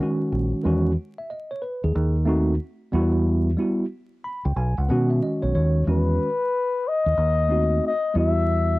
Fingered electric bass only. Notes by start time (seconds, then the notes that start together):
0.32 A#1
0.65 E2
1.84 D#2
1.96 D#2
2.93 E2
4.45 C#2
4.56 B1
4.78 C#2
4.90 B2
5.43 B1
5.55 D#2
5.87 E2
7.06 D#2
7.17 D#2
8.15 E2